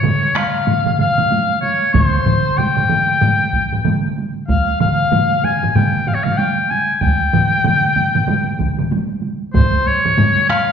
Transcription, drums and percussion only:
0.03 taiko low-mid, taiko mid, taiko high
0.22 taiko high
0.35 taiko rim, taiko high
0.55 taiko high
0.67 taiko low-mid, taiko mid, taiko high
0.86 taiko low-mid, taiko mid, taiko high
0.98 taiko low-mid, taiko mid, taiko high
1.18 taiko low-mid, taiko mid, taiko high
1.31 taiko high
1.50 taiko high
1.63 taiko high
1.82 taiko high
1.94 taiko, taiko low-mid, taiko mid, taiko high
2.14 taiko high
2.26 taiko low-mid, taiko mid, taiko high
2.47 taiko high
2.58 taiko low-mid, taiko mid, taiko high
2.77 taiko low-mid, taiko mid, taiko high
2.89 taiko low-mid, taiko mid, taiko high
3.10 taiko high
3.21 taiko low-mid, taiko mid, taiko high
3.43 taiko high
3.53 taiko, taiko high
3.72 taiko low-mid, taiko mid
3.85 taiko low-mid, taiko mid, taiko high
4.05 taiko high
4.18 taiko high
4.36 taiko high
4.48 taiko, taiko high
4.68 taiko high
4.80 taiko low-mid, taiko mid, taiko high
5.00 taiko high
5.12 taiko low-mid, taiko mid, taiko high
5.32 taiko high
5.44 taiko low-mid, taiko mid, taiko high
5.63 taiko low-mid, taiko mid, taiko high
5.75 taiko low-mid, taiko mid, taiko high
5.95 taiko high
6.07 taiko low-mid, taiko mid, taiko high
6.26 taiko low-mid, taiko mid, taiko high
6.39 taiko high
6.59 taiko high
6.71 taiko high
6.89 taiko high
7.02 taiko, taiko high
7.21 taiko high
7.33 taiko low-mid, taiko mid, taiko high
7.53 taiko high
7.64 taiko low-mid, taiko mid, taiko high
7.84 taiko high
7.96 taiko low-mid, taiko mid, taiko high
8.15 taiko low-mid, taiko mid, taiko high
8.27 taiko low-mid, taiko mid, taiko high
8.46 taiko high
8.59 taiko, taiko low-mid, taiko mid, taiko high
8.78 taiko low-mid, taiko mid, taiko high
8.91 taiko high
9.11 taiko high
9.23 taiko high
9.42 taiko high
9.54 taiko, taiko low-mid, taiko mid, taiko high
9.74 taiko high
9.86 taiko high
10.05 taiko low-mid, taiko mid, taiko high
10.17 taiko low-mid, taiko mid, taiko high
10.37 taiko high
10.49 taiko rim, taiko high
10.68 taiko high

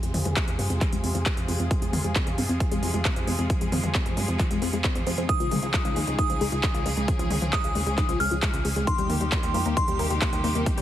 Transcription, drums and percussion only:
0.03 closed hi-hat
0.14 open hi-hat, mid tom
0.25 closed hi-hat, mid tom
0.36 kick, clap, closed hi-hat
0.48 closed hi-hat
0.59 open hi-hat
0.70 closed hi-hat
0.81 kick, clap, closed hi-hat
0.93 closed hi-hat
1.04 open hi-hat
1.15 closed hi-hat
1.26 kick, clap, closed hi-hat
1.37 closed hi-hat
1.48 open hi-hat
1.60 closed hi-hat
1.71 kick, closed hi-hat
1.82 closed hi-hat
1.93 open hi-hat, mid tom
2.04 closed hi-hat
2.16 kick, clap, closed hi-hat
2.27 closed hi-hat
2.38 open hi-hat
2.49 closed hi-hat
2.60 kick, closed hi-hat
2.72 closed hi-hat
2.83 open hi-hat
2.94 closed hi-hat
3.05 kick, clap, closed hi-hat
3.16 closed hi-hat
3.27 open hi-hat
3.39 closed hi-hat
3.50 kick, closed hi-hat
3.61 closed hi-hat
3.72 open hi-hat, mid tom
3.83 closed hi-hat, mid tom
3.95 kick, clap, closed hi-hat
4.06 closed hi-hat
4.17 open hi-hat
4.28 closed hi-hat
4.39 kick, clap, closed hi-hat
4.51 closed hi-hat
4.62 open hi-hat
4.73 closed hi-hat
4.84 kick, clap, closed hi-hat
4.95 closed hi-hat
5.07 open hi-hat
5.18 closed hi-hat
5.29 kick, closed hi-hat
5.40 closed hi-hat
5.51 open hi-hat, mid tom
5.63 closed hi-hat
5.74 kick, clap, closed hi-hat
5.85 closed hi-hat
5.96 open hi-hat
6.07 closed hi-hat
6.19 kick, closed hi-hat
6.30 closed hi-hat
6.41 open hi-hat
6.52 closed hi-hat
6.63 kick, clap, closed hi-hat
6.75 closed hi-hat
6.86 open hi-hat
6.97 closed hi-hat
7.08 kick, closed hi-hat
7.19 closed hi-hat
7.31 open hi-hat, mid tom
7.42 closed hi-hat, mid tom
7.53 kick, clap, closed hi-hat
7.64 closed hi-hat
7.75 open hi-hat
7.86 closed hi-hat
7.98 kick, clap, closed hi-hat
8.09 closed hi-hat
8.20 open hi-hat
8.31 closed hi-hat
8.42 kick, clap, closed hi-hat
8.54 closed hi-hat
8.65 open hi-hat
8.76 closed hi-hat
8.87 kick, closed hi-hat
8.98 closed hi-hat
9.10 open hi-hat, mid tom
9.21 closed hi-hat
9.32 kick, clap, closed hi-hat
9.43 closed hi-hat
9.54 open hi-hat
9.66 closed hi-hat
9.77 kick, closed hi-hat
9.88 closed hi-hat
9.99 open hi-hat
10.10 closed hi-hat
10.22 kick, clap, closed hi-hat
10.33 closed hi-hat
10.44 open hi-hat
10.55 closed hi-hat
10.66 kick, closed hi-hat
10.78 closed hi-hat

